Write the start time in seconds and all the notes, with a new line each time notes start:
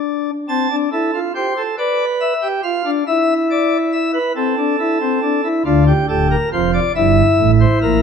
Already playing: D4
0.49 C4 A5
0.71 D4
0.92 E4 A4
1.14 F4
1.35 G4 C5
1.57 A4
1.78 B4 D5
2.21 E5
2.42 G4
2.63 F4 F5
2.85 D4
3.07 E4 E5
3.51 D5
3.93 E5
4.14 B4
4.36 C4 A4
4.58 D4
4.80 E4
5.01 C4
5.22 D4
5.44 E4
5.65 D2 D3 D4 F4
5.87 G4
6.09 D1 D2 G4 A4
6.31 A#4
6.52 F1 F2 F4 C5
6.74 D5
6.95 G1 G2 E4 E5
7.38 A1 A2
7.60 C5
7.82 A#1 A#2 A#4